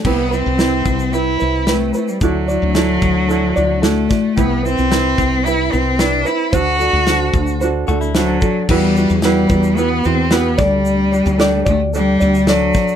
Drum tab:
CC |x---------------|----------------|----------------|----------------|
SH |--x-x-xxx-x-x-xx|x-x-x-x-x-x-x-x-|x-xxx-x-x-x-x-x-|x-x-x-xxx-xxx-x-|
SD |----o-------o---|----o-------o-o-|----o-------o---|----o-------o---|
BD |o-----o---------|o-----o-------o-|o-----o---------|o-----o-------o-|

CC |x---------------|----------------|
SH |--xxx-xxx-x-x-x-|x-xxx-x-x-xxx-xx|
SD |----o-------o-o-|----o-------o-o-|
BD |o-----o-------o-|------o-------o-|